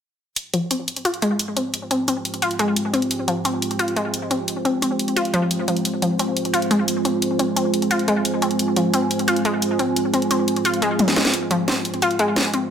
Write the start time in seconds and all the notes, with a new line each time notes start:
0.36 G#3 F4 C5 G5, closed hi-hat
0.54 F3, closed hi-hat
0.71 C4, closed hi-hat
0.88 closed hi-hat
0.96 closed hi-hat
1.05 F4, closed hi-hat
1.14 closed hi-hat
1.22 G#3, closed hi-hat
1.39 closed hi-hat
1.56 C4, closed hi-hat
1.74 closed hi-hat
1.91 C4, closed hi-hat
2.08 C4, closed hi-hat
2.25 closed hi-hat
2.34 closed hi-hat
2.42 F4, closed hi-hat
2.51 closed hi-hat
2.59 G#3, closed hi-hat
2.76 closed hi-hat
2.93 C4, closed hi-hat
3.02 closed hi-hat
3.11 closed hi-hat
3.28 F3, closed hi-hat
3.45 C4, closed hi-hat
3.62 closed hi-hat
3.71 closed hi-hat
3.79 F4, closed hi-hat
3.88 closed hi-hat
3.96 G#3, closed hi-hat
4.14 closed hi-hat
4.31 C4, closed hi-hat
4.48 closed hi-hat
4.65 C4, closed hi-hat
4.82 C4, closed hi-hat
4.99 closed hi-hat
5.08 closed hi-hat
5.16 F4, closed hi-hat
5.25 closed hi-hat
5.34 F3, closed hi-hat
5.51 closed hi-hat
5.68 F3, closed hi-hat
5.77 closed hi-hat
5.85 G#5, closed hi-hat
6.02 F3, closed hi-hat
6.19 C4, closed hi-hat
6.37 closed hi-hat
6.45 closed hi-hat
6.53 F4, closed hi-hat
6.62 closed hi-hat
6.71 G#3, closed hi-hat
6.88 closed hi-hat
7.05 C4, closed hi-hat
7.22 closed hi-hat
7.39 C4, closed hi-hat
7.56 C4, closed hi-hat
7.74 closed hi-hat
7.82 closed hi-hat
7.91 F4, closed hi-hat
7.99 closed hi-hat
8.08 G#3, closed hi-hat
8.25 closed hi-hat
8.42 C4, closed hi-hat
8.51 closed hi-hat
8.59 closed hi-hat
8.76 F3, closed hi-hat
8.94 C4, closed hi-hat
9.11 closed hi-hat
9.19 closed hi-hat
9.28 F4, closed hi-hat
9.36 closed hi-hat
9.45 G#3, closed hi-hat
9.62 closed hi-hat
9.79 C4, closed hi-hat
9.96 closed hi-hat
10.14 C4, closed hi-hat
10.22 closed hi-hat
10.31 C4, closed hi-hat
10.48 closed hi-hat
10.56 closed hi-hat
10.65 F4, closed hi-hat
10.74 closed hi-hat
10.82 G#3, closed hi-hat
10.99 closed hi-hat, high tom
11.08 snare
11.16 G#3, snare, closed hi-hat
11.25 snare, closed hi-hat
11.34 G5, closed hi-hat
11.51 F3, closed hi-hat
11.68 C4, snare, closed hi-hat
11.85 closed hi-hat
11.94 closed hi-hat
12.02 F4, closed hi-hat
12.11 closed hi-hat
12.19 G#3, closed hi-hat
12.36 snare, closed hi-hat
12.54 C4, closed hi-hat